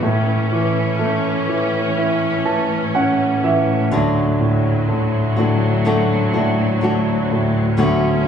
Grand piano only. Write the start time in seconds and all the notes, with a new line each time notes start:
0.03 A2
0.51 E3
0.99 A3
1.48 E3
1.97 E4
2.45 E3 A5
2.95 C#4 F#5
3.44 E3 E5
3.91 D2
4.40 A2
4.88 D3
5.38 A2
5.86 A3
6.35 A2
6.83 F#3
7.31 A2
7.79 D2